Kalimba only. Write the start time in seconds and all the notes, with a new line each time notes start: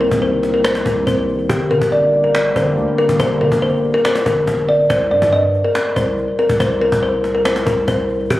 0.01 A#4
0.22 C5
0.54 A#4
0.64 C5
0.86 A#4
1.07 C5
1.49 G4
1.71 A#4
1.92 D5
2.24 A#4
2.56 C5
2.98 A#4
3.20 C5
3.41 A#4
3.62 C5
3.94 A#4
4.05 C5
4.26 A#4
4.69 D5
4.90 C5
5.11 D5
5.33 D#5
5.65 A#4
5.96 C5
6.39 A#4
6.60 C5
6.81 A#4
7.03 C5
7.35 A#4
7.45 C5
7.67 A#4
7.88 C5
8.30 G4